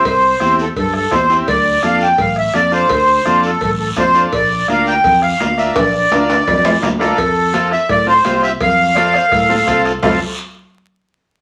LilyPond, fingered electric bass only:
\new Staff \with { instrumentName = "Fingered electric bass" } { \clef bass \time 4/4 \key f \major \tempo 4 = 168 c,4 e,4 g,4 e,4 | d,4 f,4 a,,4 f,4 | d,4 f,4 a,,4 f,4 | bes,,4 d,4 f,4 d,4 |
bes,,4 d,4 f,4 d,4 | f,2 a,4 c,4 | f,2 a,4 c,4 | f,,8 r2. r8 | }